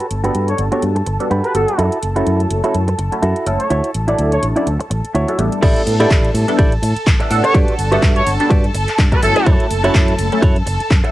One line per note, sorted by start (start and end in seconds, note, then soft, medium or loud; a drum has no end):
0.00 5.61 A4 medium
0.00 5.61 A5 medium
0.00 closed hi-hat soft
0.10 0.29 G1 medium
0.10 closed hi-hat medium
0.23 0.69 G3 medium
0.23 0.69 B3 medium
0.23 0.69 D4 medium
0.23 0.48 F#4 medium
0.23 0.48 G4 medium
0.23 0.69 A4 medium
0.23 0.48 B4 medium
0.23 0.69 F#5 medium
0.23 closed hi-hat soft
0.34 0.53 G2 medium
0.34 closed hi-hat medium
0.48 0.61 C#5 medium
0.48 closed hi-hat soft
0.58 0.68 G1 medium
0.58 closed hi-hat medium
0.72 0.90 G3 medium
0.72 0.90 B3 medium
0.72 0.90 D4 medium
0.72 0.82 F#4 medium
0.72 0.90 F#4 medium
0.72 0.83 G4 medium
0.72 0.90 A4 medium
0.72 0.83 C#5 medium
0.72 closed hi-hat soft
0.82 1.01 G2 medium
0.82 closed hi-hat medium
0.95 muted clean electric guitar stroke loud
0.95 closed hi-hat soft
1.06 1.16 G1 medium
1.06 muted clean electric guitar stroke soft
1.06 closed hi-hat medium
1.20 1.30 G3 medium
1.20 1.30 B3 medium
1.20 1.30 D4 medium
1.20 1.31 F#4 medium
1.20 1.31 A4 loud
1.20 muted fingered electric bass stroke soft
1.20 closed hi-hat soft
1.30 1.40 G2 medium
1.30 1.55 F#4 medium
1.30 1.55 G4 medium
1.30 1.55 B4 medium
1.30 closed hi-hat medium
1.44 1.52 B4 medium
1.44 closed hi-hat soft
1.54 1.64 G1 medium
1.54 1.74 G3 medium
1.54 1.74 B3 medium
1.54 1.74 D4 medium
1.54 1.74 F#4 medium
1.54 1.84 A4 medium
1.54 1.74 A4 loud
1.54 closed hi-hat medium
1.68 closed hi-hat soft
1.78 1.88 F#2 medium
1.78 1.97 E4 loud
1.78 1.97 F#4 loud
1.78 1.98 A4 loud
1.78 closed hi-hat medium
1.92 closed hi-hat soft
2.02 2.21 F#1 medium
2.02 closed hi-hat medium
2.16 2.61 F#3 medium
2.16 2.61 A3 medium
2.16 2.61 C#4 medium
2.16 2.40 E4 medium
2.16 2.61 E4 medium
2.16 2.40 F#4 medium
2.16 2.61 A4 medium
2.16 2.40 A4 medium
2.16 closed hi-hat soft
2.27 2.45 F#2 medium
2.27 closed hi-hat medium
2.40 closed hi-hat soft
2.50 2.60 F#1 medium
2.50 closed hi-hat medium
2.64 2.82 F#3 medium
2.64 2.82 A3 medium
2.64 2.82 C#4 medium
2.64 2.74 E4 medium
2.64 2.82 E4 medium
2.64 2.75 F#4 medium
2.64 2.82 A4 medium
2.64 2.75 A4 medium
2.64 closed hi-hat soft
2.74 2.93 F#2 medium
2.74 closed hi-hat medium
2.88 muted clean electric guitar stroke loud
2.88 closed hi-hat soft
2.98 3.08 F#1 medium
2.98 muted clean electric guitar stroke soft
2.98 closed hi-hat medium
3.12 3.22 F#3 medium
3.12 3.22 A3 medium
3.12 3.22 C#4 medium
3.12 3.23 E4 medium
3.12 3.23 A4 loud
3.12 muted fingered electric bass stroke soft
3.12 closed hi-hat soft
3.22 3.32 F#2 medium
3.22 3.46 E4 medium
3.22 3.47 F#4 medium
3.22 3.47 A4 medium
3.22 closed hi-hat medium
3.36 closed hi-hat soft
3.46 3.56 F#1 medium
3.46 3.66 F#3 medium
3.46 3.66 A3 medium
3.46 3.66 C#4 medium
3.46 3.66 E4 medium
3.46 3.66 A4 loud
3.46 closed hi-hat medium
3.60 3.73 C#5 medium
3.60 closed hi-hat soft
3.70 3.80 D2 medium
3.70 3.89 E4 loud
3.70 3.89 F#4 medium
3.70 3.90 C#5 loud
3.70 closed hi-hat medium
3.84 closed hi-hat soft
3.94 4.13 A1 medium
3.94 closed hi-hat medium
4.08 4.53 F#3 medium
4.08 4.53 D4 medium
4.08 4.32 E4 medium
4.08 4.53 E4 medium
4.08 4.32 F#4 medium
4.08 4.53 A4 medium
4.08 4.32 D5 medium
4.08 closed hi-hat soft
4.19 4.37 D2 medium
4.19 closed hi-hat medium
4.32 4.45 C#5 medium
4.32 closed hi-hat soft
4.43 4.52 A1 medium
4.43 closed hi-hat medium
4.56 4.74 F#3 medium
4.56 4.74 C#4 medium
4.56 4.74 D4 medium
4.56 4.67 E4 medium
4.56 4.75 E4 medium
4.56 4.67 F#4 medium
4.56 4.75 A4 medium
4.56 4.67 D5 medium
4.56 closed hi-hat soft
4.67 4.76 D2 medium
4.67 closed hi-hat medium
4.80 muted clean electric guitar stroke loud
4.80 closed hi-hat soft
4.90 5.00 A1 medium
4.90 muted clean electric guitar stroke soft
4.90 closed hi-hat medium
5.04 muted fingered electric bass stroke soft
5.04 closed hi-hat soft
5.14 5.24 D2 medium
5.14 5.39 E4 medium
5.14 5.39 F#4 medium
5.14 5.39 C#5 medium
5.14 closed hi-hat medium
5.28 5.36 F#3 medium
5.28 5.36 C#4 medium
5.28 5.36 D4 medium
5.28 5.36 E4 medium
5.28 5.37 A4 medium
5.28 closed hi-hat soft
5.38 5.48 A1 loud
5.38 5.61 G3 medium
5.38 5.61 B3 medium
5.38 5.61 D4 medium
5.38 5.62 E4 medium
5.38 5.62 A4 loud
5.38 closed hi-hat medium
5.52 closed hi-hat soft
5.62 5.72 A1 loud
5.62 5.95 G3 loud
5.62 5.95 B3 medium
5.62 5.95 D4 medium
5.62 5.81 E4 loud
5.62 5.95 E4 medium
5.62 5.81 G4 loud
5.62 11.12 A4 medium
5.62 5.82 A4 loud
5.62 5.95 A4 loud
5.62 5.82 D5 loud
5.62 11.12 A5 medium
5.62 kick loud
5.62 closed hi-hat medium
5.62 crash loud
5.62 ride medium
5.76 closed hi-hat soft
5.87 6.05 A2 medium
5.87 open hi-hat loud
5.87 ride medium
6.00 6.45 G3 medium
6.00 6.45 B3 medium
6.00 6.45 D4 medium
6.00 6.29 E4 medium
6.00 6.45 E4 medium
6.00 6.29 G4 medium
6.00 6.30 A4 medium
6.00 6.45 A4 medium
6.00 6.30 D5 medium
6.00 closed hi-hat soft
6.11 6.29 A1 medium
6.11 kick loud
6.11 clap loud
6.11 closed hi-hat medium
6.11 ride medium
6.25 closed hi-hat soft
6.34 6.44 A2 loud
6.34 open hi-hat loud
6.34 ride medium
6.48 6.66 G3 medium
6.48 6.66 B3 medium
6.48 6.66 D4 medium
6.48 6.67 E4 medium
6.48 6.67 A4 loud
6.48 closed hi-hat soft
6.59 6.77 A1 medium
6.59 6.72 E4 medium
6.59 6.72 G4 medium
6.59 6.72 A4 medium
6.59 6.73 D5 medium
6.59 kick loud
6.59 closed hi-hat medium
6.59 ride medium
6.72 closed hi-hat soft
6.82 6.92 A2 medium
6.82 muted clean electric guitar stroke soft
6.82 open hi-hat loud
6.82 ride medium
6.96 muted fingered electric bass stroke soft
6.96 closed hi-hat soft
7.07 7.16 A1 loud
7.07 kick loud
7.07 clap loud
7.07 closed hi-hat medium
7.07 ride medium
7.20 7.28 G3 medium
7.20 7.28 B3 medium
7.20 7.28 D4 medium
7.20 7.28 E4 medium
7.20 7.28 A4 medium
7.20 muted clean electric guitar stroke soft
7.20 closed hi-hat soft
7.30 7.40 A2 medium
7.30 7.89 G3 medium
7.30 7.89 B3 medium
7.30 7.89 D4 medium
7.30 7.89 A4 loud
7.30 7.89 F#5 medium
7.30 open hi-hat loud
7.30 ride medium
7.44 7.57 C#5 medium
7.44 muted clean electric guitar stroke medium
7.44 closed hi-hat soft
7.54 7.64 G2 loud
7.54 7.73 F#4 loud
7.54 7.73 G4 medium
7.54 7.74 B4 loud
7.54 7.74 D5 loud
7.54 kick loud
7.54 closed hi-hat medium
7.54 ride medium
7.68 closed hi-hat soft
7.79 7.97 G1 medium
7.79 open hi-hat loud
7.79 ride medium
7.92 8.37 G3 medium
7.92 8.37 B3 medium
7.92 8.37 D4 medium
7.92 8.21 F#4 loud
7.92 8.21 G4 medium
7.92 8.37 A4 medium
7.92 8.22 B4 medium
7.92 8.22 E5 medium
7.92 8.37 F#5 medium
7.92 closed hi-hat soft
8.03 8.21 G2 medium
8.03 kick loud
8.03 clap loud
8.03 closed hi-hat medium
8.03 ride medium
8.16 8.29 C#5 medium
8.16 closed hi-hat soft
8.27 8.36 G1 loud
8.27 open hi-hat loud
8.27 ride medium
8.40 8.58 G3 medium
8.40 8.58 B3 medium
8.40 8.58 D4 medium
8.40 8.59 F#4 medium
8.40 8.59 A4 loud
8.40 closed hi-hat soft
8.50 8.69 G2 medium
8.50 8.64 F#4 medium
8.50 8.64 G4 medium
8.50 8.64 B4 medium
8.50 8.64 D5 medium
8.50 kick loud
8.50 closed hi-hat medium
8.50 ride medium
8.64 closed hi-hat soft
8.74 8.84 G1 medium
8.74 muted clean electric guitar stroke soft
8.74 open hi-hat loud
8.74 ride medium
8.88 muted fingered electric bass stroke soft
8.88 clap soft
8.88 closed hi-hat soft
8.99 9.08 G2 loud
8.99 kick loud
8.99 clap loud
8.99 closed hi-hat medium
8.99 ride medium
9.12 9.20 G3 medium
9.12 9.20 B3 medium
9.12 9.20 D4 medium
9.12 9.20 F#4 medium
9.12 9.20 A4 medium
9.12 9.21 B4 medium
9.12 muted clean electric guitar stroke soft
9.12 kick medium
9.12 closed hi-hat soft
9.22 9.32 G1 medium
9.22 9.81 F#3 medium
9.22 9.81 A3 medium
9.22 9.81 C#4 medium
9.22 9.81 E4 medium
9.22 9.52 A4 medium
9.22 9.81 A4 loud
9.22 open hi-hat loud
9.22 ride medium
9.36 muted clean electric guitar stroke medium
9.36 closed hi-hat soft
9.46 9.56 F#2 loud
9.46 9.65 E4 loud
9.46 9.65 F#4 loud
9.46 9.65 A4 loud
9.46 9.66 C#5 loud
9.46 kick loud
9.46 closed hi-hat medium
9.46 ride medium
9.60 closed hi-hat soft
9.71 9.89 F#1 medium
9.71 open hi-hat loud
9.71 ride medium
9.84 10.29 F#3 medium
9.84 10.29 A3 medium
9.84 10.29 C#4 medium
9.84 10.13 E4 medium
9.84 10.29 E4 medium
9.84 10.13 F#4 medium
9.84 10.14 A4 medium
9.84 10.29 A4 loud
9.84 10.14 C#5 medium
9.84 closed hi-hat soft
9.95 10.13 F#2 medium
9.95 kick loud
9.95 clap loud
9.95 closed hi-hat medium
9.95 ride medium
10.08 closed hi-hat soft
10.19 10.28 F#1 loud
10.19 open hi-hat loud
10.19 ride medium
10.32 10.50 F#3 medium
10.32 10.50 A3 medium
10.32 10.50 C#4 medium
10.32 10.51 E4 medium
10.32 10.51 A4 loud
10.32 closed hi-hat soft
10.42 10.61 F#2 medium
10.42 10.56 E4 medium
10.42 10.56 F#4 medium
10.42 10.56 A4 medium
10.42 10.56 C#5 loud
10.42 kick loud
10.42 closed hi-hat medium
10.42 ride medium
10.56 closed hi-hat soft
10.66 10.76 F#1 medium
10.66 muted clean electric guitar stroke soft
10.66 open hi-hat loud
10.66 ride medium
10.80 muted fingered electric bass stroke soft
10.80 closed hi-hat soft
10.91 11.00 F#2 loud
10.91 kick loud
10.91 clap loud
10.91 closed hi-hat medium
10.91 ride medium
11.04 11.12 F#3 medium
11.04 11.12 A3 medium
11.04 11.12 C#4 medium
11.04 11.12 E4 medium
11.04 11.12 A4 medium
11.04 muted clean electric guitar stroke soft
11.04 closed hi-hat soft